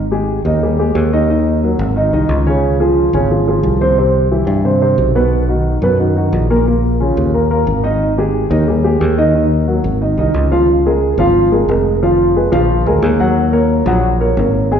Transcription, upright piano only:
0.11 0.39 G#3 medium
0.11 0.39 G4 medium
0.11 0.39 G#4 medium
0.46 0.59 D#3 medium
0.46 0.59 D#4 medium
0.46 0.59 D#5 medium
0.63 0.76 G3 medium
0.63 0.76 G4 medium
0.63 0.76 G#4 medium
0.79 1.06 G#3 medium
0.79 1.06 G4 medium
0.79 1.07 G#4 medium
1.13 1.26 D#3 medium
1.13 1.26 D#4 medium
1.13 1.26 D#5 medium
1.30 1.57 D#3 medium
1.30 1.57 D#4 medium
1.30 1.57 D#5 medium
1.63 1.90 F#3 medium
1.63 1.91 F#4 medium
1.63 1.91 A#4 medium
1.96 2.10 D#3 medium
1.96 2.10 D#4 medium
1.96 2.10 D#5 medium
2.13 2.40 D#3 medium
2.13 2.40 D#4 medium
2.13 2.41 D#5 medium
2.47 2.74 C#3 medium
2.47 2.74 C#4 medium
2.47 2.74 C#5 medium
2.80 3.07 F3 medium
2.80 3.08 F4 medium
2.80 3.08 G#4 medium
3.14 3.27 C#3 medium
3.14 3.28 C#4 medium
3.14 3.28 C#5 medium
3.31 3.44 F3 medium
3.31 3.44 F4 medium
3.31 3.44 G#4 medium
3.48 3.75 F3 medium
3.48 3.75 F4 medium
3.48 3.75 G#4 medium
3.81 3.95 C3 medium
3.81 3.95 C4 medium
3.81 3.95 C5 medium
3.98 4.25 C3 medium
3.98 4.25 C4 medium
3.98 4.26 C5 medium
4.31 4.59 E3 medium
4.31 4.59 E4 medium
4.31 4.59 G4 medium
4.64 4.78 C3 medium
4.64 4.79 C4 medium
4.64 4.79 C5 medium
4.81 5.09 C3 medium
4.81 5.09 C4 medium
4.81 5.09 C5 medium
5.15 5.43 B2 medium
5.15 5.43 B3 medium
5.15 5.43 B4 medium
5.49 5.76 D#3 medium
5.49 5.76 D#4 medium
5.49 5.76 F#4 medium
5.83 5.96 B2 medium
5.83 5.96 B3 medium
5.83 5.97 B4 medium
6.00 6.13 D#3 medium
6.00 6.13 D#4 medium
6.00 6.13 F#4 medium
6.16 6.44 D#3 medium
6.16 6.44 D#4 medium
6.16 6.44 F#4 medium
6.50 6.63 A#2 medium
6.50 6.64 A#3 medium
6.50 6.64 A#4 medium
6.67 6.94 A#2 medium
6.67 6.94 A#3 medium
6.67 6.94 A#4 medium
7.00 7.27 C#3 medium
7.00 7.28 C#4 medium
7.00 7.28 F4 medium
7.34 7.47 A#2 medium
7.34 7.47 A#3 medium
7.34 7.47 A#4 medium
7.51 7.78 A#2 medium
7.51 7.78 A#3 medium
7.51 7.78 A#4 medium
7.83 8.11 D#3 medium
7.83 8.11 D#4 medium
7.83 8.11 D#5 medium
8.18 8.45 G#3 medium
8.18 8.45 G4 medium
8.18 8.45 G#4 medium
8.50 8.64 D#3 medium
8.50 8.64 D#4 medium
8.50 8.64 D#5 medium
8.68 8.81 G3 medium
8.68 8.81 G4 medium
8.68 8.82 G#4 medium
8.84 9.12 G#3 medium
8.84 9.12 G4 medium
8.84 9.12 G#4 medium
9.18 9.31 D#3 medium
9.18 9.32 D#4 medium
9.18 9.32 D#5 medium
9.34 9.62 D#3 medium
9.34 9.62 D#4 medium
9.34 9.62 D#5 medium
9.68 9.95 F#3 medium
9.68 9.95 F#4 medium
9.68 9.96 A#4 medium
10.01 10.15 D#3 medium
10.01 10.15 D#4 medium
10.01 10.15 D#5 medium
10.18 10.46 D#3 medium
10.18 10.46 D#4 medium
10.18 10.46 D#5 medium
10.51 10.65 F3 medium
10.51 10.65 F4 medium
10.51 10.66 F5 medium
10.86 11.13 G#3 medium
10.86 11.13 G#4 medium
10.86 11.13 A#4 medium
11.19 11.46 F3 medium
11.19 11.46 F4 medium
11.19 11.47 F5 medium
11.52 11.66 G#3 medium
11.52 11.66 G#4 medium
11.52 11.66 A#4 medium
11.69 11.97 G#3 medium
11.69 11.97 G#4 medium
11.69 11.97 A#4 medium
12.03 12.30 F3 medium
12.03 12.30 F4 medium
12.03 12.30 F5 medium
12.36 12.50 G#3 medium
12.36 12.50 G#4 medium
12.36 12.50 B4 medium
12.52 12.80 F3 medium
12.52 12.80 F4 medium
12.52 12.80 F5 medium
12.86 13.00 G#3 medium
12.86 13.00 G#4 medium
12.86 13.00 A#4 medium
13.03 13.17 G#3 medium
13.03 13.17 G#4 medium
13.03 13.17 A#4 medium
13.19 13.47 F#3 medium
13.19 13.47 F#4 medium
13.19 13.47 F#5 medium
13.53 13.81 A#3 medium
13.53 13.81 A#4 medium
13.53 13.81 C#5 medium
13.87 14.14 F#3 medium
13.87 14.14 F#4 medium
13.87 14.15 F#5 medium
14.21 14.34 A#3 medium
14.21 14.34 A#4 medium
14.21 14.35 C#5 medium
14.38 14.65 A#3 medium
14.38 14.65 A#4 medium
14.38 14.65 C#5 medium
14.71 14.80 G#3 medium
14.71 14.80 G#4 medium
14.71 14.80 G#5 medium

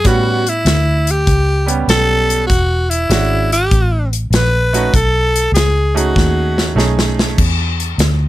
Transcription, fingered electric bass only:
0.04 0.64 A2 medium
0.65 1.25 D2 medium
1.27 1.86 C#2 medium
1.88 2.47 B1 medium
2.49 3.08 E1 medium
3.10 3.69 G#1 medium
3.72 4.30 A1 medium
4.30 4.91 A#1 medium
4.94 5.51 B1 medium
5.52 6.12 C#2 medium
6.16 6.75 D#2 medium
6.75 7.35 B1 medium
7.38 7.97 E2 medium
7.98 8.28 D2 medium

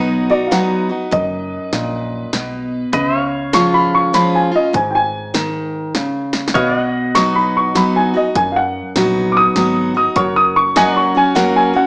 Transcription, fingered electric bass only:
0.00 0.67 B1 medium
1.12 1.58 F#1 medium
1.73 2.24 A#1 medium
2.33 2.85 B1 medium
2.93 4.29 C#2 medium
4.74 6.10 G#1 medium
6.55 7.91 B1 medium
8.35 8.81 F#2 medium
8.95 9.47 A#1 medium
9.56 10.07 G#1 medium
10.16 11.51 F#1 medium

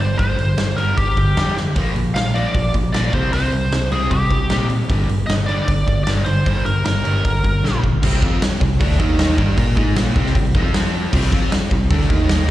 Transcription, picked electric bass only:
0.00 0.14 G1 medium
0.19 0.35 G1 loud
0.38 0.53 G1 medium
0.58 0.73 G1 medium
0.77 0.93 G1 medium
0.98 1.13 G1 loud
1.17 1.33 G1 medium
1.36 1.67 F2 medium
1.76 1.91 A#1 loud
1.95 2.11 A#1 medium
2.15 2.46 A#1 medium
2.55 2.70 A#1 medium
2.74 2.89 A#1 medium
2.94 3.09 A#1 medium
3.13 3.28 C2 medium
3.32 3.48 C2 loud
3.52 3.67 C2 medium
3.71 3.87 C2 medium
3.91 4.06 C2 medium
4.11 4.26 C2 loud
4.31 4.46 C2 medium
4.51 4.81 A#2 medium
4.90 5.05 G1 medium
5.08 5.24 G1 medium
5.29 5.59 G1 medium
5.68 5.83 G1 loud
5.88 6.03 G1 medium
6.07 6.22 G1 medium
6.27 6.42 G1 medium
6.47 6.62 G1 loud
6.66 6.81 G1 medium
6.86 7.01 G1 medium
7.06 7.21 G1 medium
7.25 7.40 G1 loud
7.45 7.60 G1 medium
7.64 7.94 A#1 medium
8.03 8.21 C2 loud
8.23 8.40 F2 loud
8.43 muted picked electric bass stroke soft
8.62 8.79 C2 medium
8.80 8.98 D2 loud
9.00 9.36 D#2 loud
9.38 9.57 G2 loud
9.58 9.76 A#2 loud
9.77 9.95 G#2 loud
9.96 10.15 A#1 medium
10.16 10.34 C2 loud
10.35 10.54 C2 medium
10.55 11.09 F2 medium
11.13 11.31 C2 loud
11.32 11.51 F2 loud
11.52 muted picked electric bass stroke soft
11.72 11.90 C2 medium
11.91 12.09 D2 loud
12.10 12.46 D#2 loud

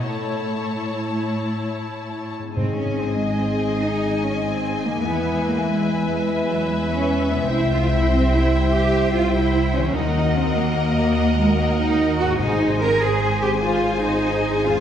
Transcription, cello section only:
0.05 2.36 A2 soft
2.56 2.76 C4 medium
2.77 2.98 C#4 soft
2.98 3.19 C4 medium
3.19 3.39 G#3 medium
3.39 3.81 C4 medium
3.81 4.23 D#4 medium
4.23 4.43 C#4 soft
4.43 4.83 C4 medium
4.85 5.05 A#3 medium
5.05 5.46 B3 medium
5.46 5.67 A#3 medium
5.67 6.07 G#3 medium
6.08 6.48 G#3 medium
6.48 6.69 F#3 medium
6.69 6.89 G#3 soft
6.90 7.30 C#4 medium
7.31 7.51 B3 medium
7.51 7.71 E4 medium
7.73 7.92 F4 medium
7.93 8.12 E4 medium
8.14 8.33 C4 medium
8.34 8.74 E4 medium
8.74 9.14 G4 medium
9.15 9.34 F4 medium
9.35 9.75 E4 medium
9.75 9.96 C#4 medium
9.95 10.36 D#4 medium
10.35 10.56 C4 medium
10.55 10.96 A#3 medium
10.97 11.37 A#3 medium
11.37 11.58 G#3 medium
11.57 11.78 A#3 medium
11.79 12.19 D#4 medium
12.19 12.39 F#4 medium
12.39 12.80 D#4 medium
12.81 13.01 A#4 medium
13.02 13.42 G#4 medium
13.41 13.49 G4 medium
13.63 14.03 F4 medium
14.03 14.63 D#4 medium
14.65 14.80 F4 medium

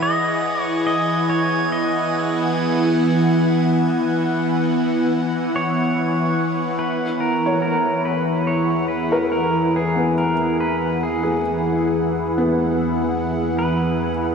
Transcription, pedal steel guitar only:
0.02 0.61 D#5 medium
0.61 0.85 C#5 medium
0.87 1.29 D#5 medium
1.30 1.72 C#5 medium
1.72 5.92 D#5 medium
5.56 6.86 C#5 medium
6.79 7.20 B4 medium
7.20 7.61 A#4 medium
7.62 8.05 A#4 medium
8.05 8.47 B4 medium
8.47 8.88 C#5 medium
8.88 9.31 B4 medium
9.32 9.77 A#4 medium
9.76 10.21 G#4 medium
10.18 10.60 A#4 medium
10.60 11.05 B4 medium
11.03 12.27 G#4 medium
13.59 14.35 B4 medium

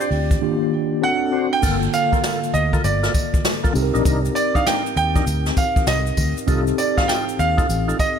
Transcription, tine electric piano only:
0.00 0.39 C4 medium
0.00 0.40 D4 medium
0.00 0.40 F4 medium
0.00 0.41 G4 medium
0.41 1.02 D#3 medium
0.41 1.02 A#3 medium
0.41 1.01 D4 medium
0.41 1.03 F4 medium
0.41 1.03 G4 medium
1.02 1.63 C4 medium
1.02 1.63 D4 medium
1.02 1.63 F#4 medium
1.02 1.63 A4 medium
1.62 3.71 D3 medium
1.62 3.71 A#3 medium
1.62 3.71 F4 medium
1.62 3.72 A4 medium
3.73 6.13 C4 medium
3.73 6.13 D#4 medium
3.73 6.14 G4 medium
3.73 3.84 A4 medium
3.82 6.17 A#4 medium
6.47 8.19 C4 medium
6.47 8.19 D#4 medium
6.47 8.19 G4 medium
6.47 8.19 A4 medium

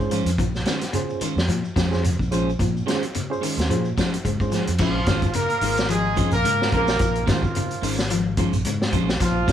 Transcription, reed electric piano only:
0.00 0.28 C#4 medium
0.00 0.29 F4 medium
0.00 0.29 G#4 medium
0.00 0.29 C5 medium
0.94 1.24 C#4 medium
0.94 1.25 F4 medium
0.94 1.25 G#4 medium
0.94 1.25 C5 medium
1.91 2.03 C#4 medium
1.91 2.03 F4 medium
1.91 2.03 G#4 medium
1.91 2.04 C5 medium
2.31 2.50 C#4 medium
2.31 2.50 F4 medium
2.31 2.50 G#4 medium
2.31 2.50 C5 medium
2.87 3.01 C#4 medium
2.87 3.01 F4 medium
2.87 3.01 G#4 medium
2.87 3.02 C5 medium
3.30 3.41 C#4 medium
3.30 3.42 F4 medium
3.30 3.42 G#4 medium
3.30 3.42 C5 medium
3.69 3.88 C#4 medium
3.69 3.88 F4 medium
3.69 3.88 G#4 medium
3.69 3.88 C5 medium
4.24 4.29 G#4 medium
4.24 4.30 C5 medium
4.41 4.70 C#4 medium
4.41 4.70 F4 medium
4.41 4.70 G#4 medium
4.41 4.71 C5 medium

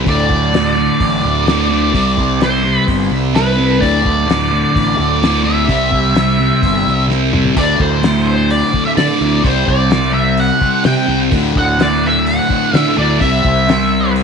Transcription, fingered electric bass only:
0.07 0.88 D2 medium
1.00 1.21 A1 medium
1.24 1.94 D2 medium
1.94 2.76 C2 medium
2.88 3.08 G1 medium
3.11 3.82 C2 medium
3.82 4.64 D2 medium
4.76 4.96 A1 medium
4.99 5.69 D2 medium
5.69 6.51 C2 medium
6.63 6.83 G1 medium
6.86 7.47 C2 medium
7.57 7.77 D2 medium
7.80 8.62 D2 medium
8.97 9.07 D3 loud
9.21 9.41 D2 medium
9.44 9.65 C2 medium
9.68 10.50 C2 medium
10.85 10.95 C3 medium
11.08 11.29 C2 medium
11.32 11.53 D2 medium
11.56 12.38 D2 medium
12.74 12.84 D3 medium
12.97 13.18 D2 medium
13.21 13.42 C2 loud
13.45 14.23 C2 medium

